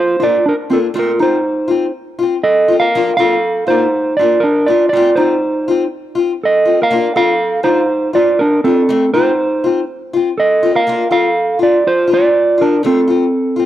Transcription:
0.00 0.19 F4 medium
0.00 0.23 C5 medium
0.20 0.37 A#3 soft
0.20 0.37 D4 soft
0.20 0.43 F4 medium
0.20 0.36 F4 soft
0.20 0.45 D5 medium
0.46 0.52 D4 medium
0.46 0.55 A#4 medium
0.70 0.87 A#3 soft
0.70 0.77 C4 medium
0.70 0.86 D4 soft
0.70 0.85 F4 medium
0.70 0.79 A4 medium
0.94 1.10 A3 medium
0.94 1.11 C4 medium
0.94 1.19 F4 medium
0.94 1.11 F4 medium
0.99 1.21 A#4 medium
1.19 1.36 C4 soft
1.19 1.91 D#4 medium
1.19 1.35 F4 soft
1.19 1.92 C5 medium
1.68 1.85 C4 soft
1.68 1.84 F4 soft
2.19 2.34 F4 medium
2.23 2.36 C4 soft
2.43 2.79 A4 medium
2.43 2.79 D#5 medium
2.68 2.86 C4 soft
2.68 2.84 F4 soft
2.80 3.16 A#4 medium
2.80 3.16 F5 loud
2.95 3.10 F3 medium
2.95 3.10 A#3 medium
2.95 3.10 D4 medium
2.95 3.11 F4 medium
3.17 3.34 D4 soft
3.17 3.34 F4 medium
3.17 3.66 A4 medium
3.17 3.64 F5 loud
3.21 3.35 A#3 soft
3.67 3.85 A#3 soft
3.67 3.84 D4 soft
3.67 4.15 D#4 medium
3.67 3.83 F4 soft
3.67 4.14 C5 medium
4.17 4.34 F4 soft
4.17 4.42 F4 medium
4.17 4.43 D5 medium
4.21 4.36 A#3 soft
4.21 4.35 D4 soft
4.40 4.66 D4 medium
4.40 4.67 A#4 medium
4.66 4.84 D4 soft
4.66 4.83 F4 soft
4.66 4.92 F4 medium
4.66 4.88 D5 medium
4.89 5.16 F4 medium
4.89 5.16 D5 medium
4.93 5.08 A3 medium
4.93 5.09 C4 medium
4.93 5.10 F4 medium
5.15 5.88 D#4 medium
5.15 5.32 F4 medium
5.15 5.87 C5 medium
5.20 5.34 C4 soft
5.68 5.84 C4 soft
5.68 5.82 F4 soft
6.15 6.33 C4 soft
6.15 6.31 F4 soft
6.44 6.77 A4 medium
6.44 6.82 D#5 medium
6.65 6.82 C4 soft
6.65 6.81 F4 soft
6.82 7.15 A#4 medium
6.82 7.16 F5 medium
6.91 7.06 A#3 medium
6.91 7.06 D4 medium
6.91 7.07 F4 medium
7.16 7.32 D4 soft
7.16 7.31 F4 soft
7.16 7.62 A4 medium
7.16 7.67 F5 loud
7.63 7.81 D4 soft
7.63 8.10 D#4 medium
7.63 7.79 F4 soft
7.63 8.10 C5 medium
8.13 8.31 D4 soft
8.13 8.29 F4 soft
8.13 8.38 F4 medium
8.13 8.40 D5 medium
8.39 8.63 D4 medium
8.39 8.62 A#4 medium
8.64 9.10 C4 medium
8.64 8.81 D4 soft
8.64 8.79 F4 soft
8.64 9.13 A4 medium
8.89 9.04 A3 medium
8.89 9.05 C4 medium
8.89 muted steel-string acoustic guitar stroke medium
9.14 9.30 C4 soft
9.14 9.84 D#4 medium
9.14 9.29 F4 soft
9.14 9.84 C5 medium
9.64 9.80 C4 soft
9.64 9.79 F4 soft
10.13 10.30 C4 soft
10.13 10.28 F4 medium
10.38 10.72 A4 medium
10.38 10.73 D#5 medium
10.63 10.79 C4 soft
10.63 10.77 F4 medium
10.75 11.09 A#4 medium
10.75 11.11 F5 medium
10.87 11.02 A#3 medium
10.87 11.02 D4 medium
10.87 11.03 F4 medium
11.11 11.26 F4 medium
11.11 11.57 A4 medium
11.11 11.63 F5 loud
11.59 11.76 D4 soft
11.59 11.75 F4 soft
11.59 11.85 F4 medium
11.63 11.87 D5 medium
11.87 12.09 F4 medium
11.87 12.10 C5 medium
12.07 12.26 D4 soft
12.07 12.24 F4 medium
12.13 12.58 F4 medium
12.13 12.63 D5 medium
12.58 12.74 F4 medium
12.58 12.85 A#4 medium
12.62 12.76 D4 soft
12.62 12.84 D4 medium
12.83 12.99 A3 medium
12.83 12.99 C4 medium
12.83 13.66 C4 medium
12.83 13.00 F4 medium
12.83 13.66 A4 medium
13.07 13.25 C4 soft
13.07 13.23 F4 soft
13.56 13.66 C4 soft
13.56 13.66 F4 medium

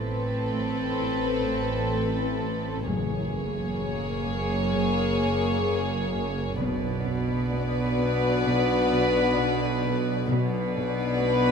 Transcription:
0.00 2.82 A1 medium
0.00 2.82 A2 medium
0.00 2.82 C4 medium
0.00 2.83 C4 medium
0.00 2.82 A4 medium
0.00 2.82 B4 medium
0.00 2.83 B4 medium
0.00 impact medium
0.05 0.34 A3 soft
0.52 0.81 A2 soft
1.00 1.28 A2 medium
1.46 1.74 A2 soft
1.94 2.21 A2 soft
2.41 2.68 A2 soft
2.86 6.59 F#1 medium
2.86 4.22 F#2 medium
2.86 6.59 F#2 medium
2.86 3.15 F#2 medium
2.86 6.55 A#3 medium
2.86 6.41 A#3 medium
2.86 6.55 G#4 medium
2.86 6.41 G#4 medium
2.86 6.55 C#5 medium
3.33 3.61 F#2 medium
3.80 4.08 F#3 medium
4.26 4.54 F#2 medium
4.73 5.01 F#2 medium
5.19 5.47 F#2 soft
5.67 5.94 F#2 soft
6.13 6.41 F#2 medium
6.58 10.26 B1 medium
6.58 10.29 B1 medium
6.58 7.94 B2 medium
6.58 10.26 B2 medium
6.58 6.88 B2 medium
6.58 10.26 B3 medium
6.58 10.26 D4 medium
6.58 10.25 F#4 medium
6.58 10.26 B4 medium
6.58 10.26 D5 medium
7.05 7.33 B2 medium
7.52 7.80 B3 medium
7.99 8.26 B2 medium
8.45 8.73 B2 medium
8.92 9.19 B2 medium
9.38 9.66 B2 medium
9.84 10.12 B2 medium
10.29 11.51 B1 medium
10.29 10.58 B2 loud
10.29 11.51 B2 medium
10.29 11.51 B3 medium
10.29 11.51 D4 loud
10.29 11.51 F#4 medium
10.29 11.51 B4 loud
10.29 11.51 D5 medium
10.77 11.04 B2 medium
11.22 11.49 B3 medium

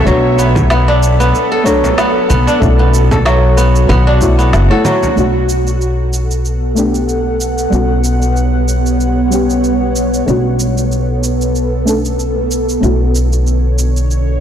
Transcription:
0.00 0.38 B3 medium
0.00 0.94 C#4 medium
0.00 1.24 A4 medium
0.04 1.31 B1 loud
0.04 1.65 F#3 medium
0.04 1.61 A3 medium
0.04 2.59 B3 medium
0.04 1.63 D4 medium
0.04 1.63 F#4 medium
0.04 2.59 A4 medium
0.04 1.62 C#5 medium
0.04 kick loud
0.04 shaker soft
0.39 0.70 B3 medium
0.39 shaker medium
0.55 kick loud
0.55 frame drum medium
0.55 low conga medium
0.55 shaker soft
0.70 1.20 B3 medium
0.70 snare loud
0.70 shaker soft
0.88 2.47 D4 medium
1.03 shaker medium
1.20 1.97 B3 medium
1.20 shaker soft
1.35 shaker soft
1.52 2.83 A4 medium
1.64 2.67 F#3 medium
1.64 2.57 A3 medium
1.64 2.58 D4 medium
1.64 2.59 A4 medium
1.64 2.58 C#5 medium
1.64 kick medium
1.64 shaker medium
1.84 frame drum medium
1.84 shaker soft
1.98 2.29 B3 medium
1.98 snare loud
1.98 shaker soft
2.30 2.45 B1 medium
2.30 2.79 B3 medium
2.30 shaker medium
2.47 4.07 D4 medium
2.47 shaker soft
2.60 3.86 B1 loud
2.60 4.17 A3 medium
2.60 4.18 C#4 medium
2.60 4.18 E4 medium
2.60 5.15 F#4 medium
2.60 kick loud
2.60 shaker soft
2.64 4.19 F#4 medium
2.79 3.57 B3 medium
2.94 shaker medium
3.11 4.43 A4 medium
3.11 kick loud
3.11 low conga medium
3.11 frame drum medium
3.11 shaker soft
3.25 4.84 F#3 medium
3.25 snare loud
3.25 shaker soft
3.57 3.89 B3 medium
3.57 shaker medium
3.76 shaker soft
3.89 4.53 B1 medium
3.89 4.38 B3 medium
3.89 low conga medium
3.89 shaker soft
4.07 5.75 D4 medium
4.21 4.66 A3 medium
4.21 4.67 E4 medium
4.21 4.67 F#4 loud
4.21 4.67 C#5 medium
4.21 kick loud
4.21 shaker medium
4.39 6.25 B3 medium
4.39 shaker soft
4.53 4.68 F#1 medium
4.53 snare loud
4.53 shaker soft
4.69 5.13 A3 medium
4.69 5.14 E4 medium
4.69 5.14 F#4 loud
4.69 6.03 A4 medium
4.69 5.13 C#5 medium
4.85 5.22 F#3 medium
4.85 low conga medium
4.85 shaker medium
5.03 frame drum medium
5.03 shaker soft
5.15 7.70 B1 medium
5.15 6.72 A3 medium
5.15 6.73 B3 medium
5.15 12.79 B3 medium
5.15 6.74 D4 medium
5.15 6.74 F#4 medium
5.15 7.70 A4 medium
5.15 10.24 F#5 medium
5.15 shaker soft
5.49 shaker medium
5.67 shaker soft
5.81 shaker soft
6.13 shaker medium
6.31 shaker soft
6.45 shaker soft
6.75 7.68 A3 medium
6.75 7.69 B3 medium
6.75 7.69 D4 medium
6.75 7.70 G4 medium
6.75 shaker medium
6.95 shaker soft
7.09 shaker soft
7.41 shaker medium
7.58 shaker soft
7.70 10.25 B1 medium
7.70 9.27 G3 medium
7.70 10.25 G3 medium
7.70 9.28 B3 medium
7.70 9.29 C#4 medium
7.70 10.25 C#5 medium
7.70 shaker soft
7.74 9.29 F#4 medium
8.04 shaker medium
8.22 shaker soft
8.37 shaker soft
8.68 shaker medium
8.86 shaker soft
9.00 shaker soft
9.30 10.23 G3 medium
9.30 10.24 B3 medium
9.30 10.24 C#4 medium
9.30 10.25 G4 medium
9.30 shaker medium
9.50 shaker soft
9.64 shaker soft
9.96 shaker medium
10.14 shaker soft
10.26 12.80 B1 medium
10.26 11.83 A3 medium
10.26 11.83 C#4 medium
10.26 11.84 D4 medium
10.26 12.80 A4 medium
10.26 shaker soft
10.30 11.85 F#4 medium
10.60 shaker medium
10.78 shaker soft
10.92 shaker soft
11.24 shaker medium
11.41 shaker soft
11.55 shaker soft
11.85 12.78 A3 medium
11.85 12.79 C#4 medium
11.85 12.80 D4 medium
11.85 12.80 A4 medium
11.85 shaker medium
12.05 shaker soft
12.20 shaker soft
12.51 shaker medium
12.69 shaker soft
12.80 14.40 B1 medium
12.80 14.40 D3 medium
12.80 14.38 A3 medium
12.80 14.38 C#4 medium
12.80 14.39 E4 medium
12.80 14.40 F#4 medium
12.80 14.40 C#5 medium
12.80 shaker soft
13.15 shaker medium
13.33 shaker soft
13.47 shaker soft
13.79 shaker medium
13.97 shaker soft
14.11 shaker soft

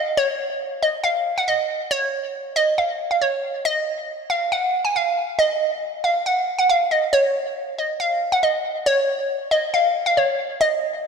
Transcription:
0.00 0.11 D#5 medium
0.17 0.58 C#5 loud
0.83 0.99 D#5 medium
1.04 1.34 F5 medium
1.38 1.45 F#5 medium
1.48 1.89 D#5 medium
1.91 2.32 C#5 loud
2.56 2.72 D#5 loud
2.78 3.09 F5 medium
3.11 3.19 F5 medium
3.21 3.62 C#5 medium
3.65 4.06 D#5 loud
4.30 4.46 F5 medium
4.52 4.83 F#5 medium
4.85 4.93 G#5 medium
4.96 5.37 F5 medium
5.39 5.80 D#5 loud
6.04 6.20 F5 medium
6.26 6.57 F#5 medium
6.59 6.67 F#5 medium
6.70 6.86 F5 medium
6.91 7.07 D#5 medium
7.13 7.54 C#5 loud
7.78 7.95 D#5 medium
8.00 8.30 F5 medium
8.32 8.40 F#5 medium
8.43 8.84 D#5 medium
8.86 9.27 C#5 loud
9.51 9.68 D#5 medium
9.74 10.04 F5 medium
10.06 10.14 F5 medium
10.17 10.58 C#5 medium
10.61 11.02 D#5 loud

